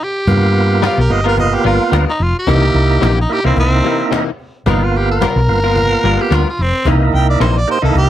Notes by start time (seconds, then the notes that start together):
0.04 G4
0.27 G2 A#3 B3 F4, cajon bass
0.54 cajon slap
0.82 G3 B3 F4 A#4 F5, cajon slap
0.98 B1 A#4
1.09 G1 A#3 B3 F4 D#5
1.24 A#3 B3 F4 A#4
1.28 A#4
1.38 D#5, cajon bass, cajon slap
1.54 G4
1.64 G1 G3 B3 F4 A#4, cajon slap
1.92 D2 G3 B3 F4 A#4, cajon slap
2.10 D#4
2.20 F1 F4, cajon slap
2.39 G4
2.47 C2 C3 E3 A#3 D#4 E4, cajon bass
2.74 C2
3.01 A#1 C3 E3 A#3 D#4, cajon slap
3.21 D#4
3.29 A#3 D#4 E4 G4, cajon slap
3.44 C2 E3 A#3 C4 D#4 E4
3.57 C2 C4, cajon bass
3.84 C3 E3 A#3 D#4
4.11 C3 E3 A#3 D#4, cajon slap
4.39 cajon slap
4.66 G1 G3 A#3 B3 D#4 F4 A#4, cajon bass
4.84 F4
4.93 G4, cajon slap
5.12 A#4
5.21 G3 B3 F4 A#4, cajon bass, cajon slap
5.36 B1
5.48 G1 A#3 B3 F4, cajon slap
5.63 A#3 B3 F4 A#4
5.76 cajon bass, cajon slap
6.03 G1 G3 B3 F4 A#4, cajon slap
6.21 G4
6.30 D2 G3 B3 F4 A#4, cajon slap
6.35 F4
6.49 F4
6.58 F1, cajon slap
6.62 C4
6.85 C2 C3 E3 A#3 D#4 E4, cajon bass
7.12 C2 G5, cajon slap
7.30 D5
7.40 A#1 C3 E3 A#3 D#4 C5, cajon slap
7.57 D5
7.67 A#3 D#4 G4 C5, cajon slap
7.82 C2 E3 A#3 D#4 E4 A4
7.95 C2 G4, cajon bass